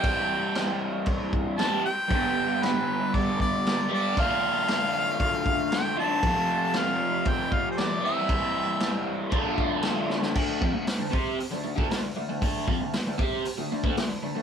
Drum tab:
CC |x---x---x---x---|x---x---x---x---|x---x---x---x---|x---x---x---x---|
HH |----------------|----------------|----------------|----------------|
SD |----o-------o---|----o-------o---|----o-------o---|----o-------o---|
BD |o-------o-o-----|o-------o-o-----|o-------o-o-----|o-------o-o-----|

CC |x---x---x---x---|x---------------|----------------|
HH |----------------|----o---o---o---|o---o---o---o---|
SD |----o-------o-oo|----o-------o---|----o-------o---|
BD |o-------o-o-----|o-o---o----o----|o-o---o----o----|